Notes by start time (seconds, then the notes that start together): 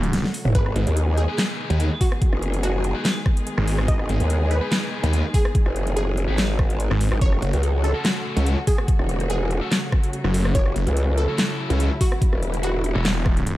Already playing: E1 C#3 F#3 A3 F#4
0.03 closed hi-hat
0.13 snare, closed hi-hat
0.24 snare
0.34 open hi-hat
0.45 E1, mid tom
0.55 G#1 D#3 G#3 B3 G#4 B4, kick, closed hi-hat
0.66 cross-stick
0.76 G#1, closed hi-hat
0.87 D#2, closed hi-hat
0.97 closed hi-hat
1.17 G#4, closed hi-hat
1.28 D#4 G#4 B4
1.38 snare, clap, closed hi-hat
1.70 D#2 D#4 G#4 B4, closed hi-hat
1.80 closed hi-hat
2.01 F#4, kick, open hi-hat
2.12 cross-stick
2.22 kick, closed hi-hat
2.33 F#1, cross-stick
2.42 closed hi-hat
2.54 closed hi-hat
2.63 F#4, closed hi-hat
2.84 closed hi-hat
2.95 D#4 G#4 B4
3.05 snare, clap, closed hi-hat
3.26 kick, cross-stick
3.37 closed hi-hat
3.47 closed hi-hat
3.58 G#1, cross-stick
3.67 open hi-hat
3.79 cross-stick
3.88 G#1 D#5, kick, closed hi-hat
3.99 cross-stick
4.09 G#1, closed hi-hat
4.20 D#2, closed hi-hat
4.30 closed hi-hat
4.51 B4, closed hi-hat
4.62 D#4 G#4 B4
4.72 snare, clap, closed hi-hat
5.03 D#2 D#4 G#4 B4, closed hi-hat
5.13 closed hi-hat
5.34 G#4, kick, open hi-hat
5.45 cross-stick
5.55 kick, closed hi-hat
5.66 F#1, cross-stick
5.76 closed hi-hat
5.87 closed hi-hat
5.97 G#4, closed hi-hat
6.17 closed hi-hat
6.28 G#1 D#4 G#4 B4
6.38 snare, clap, closed hi-hat
6.59 kick, cross-stick
6.70 closed hi-hat
6.80 closed hi-hat
6.91 G#1, cross-stick
7.01 open hi-hat
7.12 G#1, cross-stick
7.21 F#1 C#3 F#3 A3 F#4 C#5, kick, closed hi-hat
7.33 cross-stick
7.42 F#1, closed hi-hat
7.53 C#2, closed hi-hat
7.63 closed hi-hat
7.84 A4, closed hi-hat
7.95 C#4 F#4 A4
8.05 snare, clap, closed hi-hat
8.37 C#2 C#4 F#4 A4, closed hi-hat
8.46 closed hi-hat
8.67 G#4, kick, open hi-hat
8.78 cross-stick
8.88 kick, closed hi-hat
8.99 E1, cross-stick
9.09 closed hi-hat
9.20 closed hi-hat
9.30 G#4, closed hi-hat
9.51 closed hi-hat
9.61 C#4 F#4 A4
9.72 snare, clap, closed hi-hat
9.92 kick, cross-stick
10.04 closed hi-hat
10.13 closed hi-hat
10.24 F#1, cross-stick
10.34 open hi-hat
10.45 cross-stick
10.55 F#1 E4 C#5, kick, closed hi-hat
10.66 cross-stick
10.76 F#1, closed hi-hat
10.87 C#2, closed hi-hat
10.97 closed hi-hat
11.18 A4, closed hi-hat
11.28 C#4 F#4 A4
11.38 snare, clap, closed hi-hat
11.70 C#2 C#4 F#4 A4, closed hi-hat
11.80 closed hi-hat
12.01 F#4, kick, open hi-hat
12.12 cross-stick
12.22 kick, closed hi-hat
12.33 E1, cross-stick
12.43 closed hi-hat
12.54 closed hi-hat
12.63 F#4, closed hi-hat
12.84 closed hi-hat
12.95 E1 C#4 F#4 A4
13.05 snare, clap, closed hi-hat
13.26 kick, cross-stick
13.37 closed hi-hat
13.47 closed hi-hat